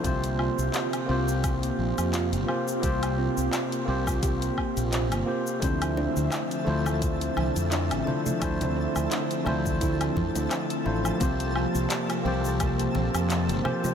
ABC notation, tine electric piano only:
X:1
M:4/4
L:1/8
Q:"Swing 16ths" 1/4=86
K:Cmix
V:1 name="Tine electric piano"
[B,CFGc]3 [B,CFGc]4 [B,CFGc] | [B,CFGc]3 [B,CFGc]4 [B,CFGc] | [F,A,DEc]3 [A,DEFc]4 [A,DEFc] | [F,A,DEc]3 [A,DEFc]4 [A,DEFc] |
[B,CFGc]3 [B,CFGc]4 [B,CFGc] |]